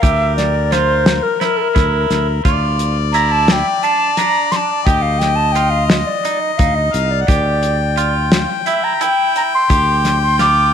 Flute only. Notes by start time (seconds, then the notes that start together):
0.02 E5
0.37 D5
0.72 C5
1.23 A#4
1.40 C5
1.45 A#4
1.57 A4
1.62 A#4
3.13 A#5
3.32 A5
3.48 G5 A5
3.83 A5
4.18 A#5
4.52 C6
4.56 A5
4.84 G5
5.02 F5
5.19 G5
5.36 A5
5.52 G5
5.70 F5
5.88 D#5
6.06 D5
6.41 D#5
6.58 F5
6.75 D#5
7.11 D5
8.66 E5
8.84 A#5
9.02 G5
9.37 A#5
9.55 C6
10.23 C6
10.40 D6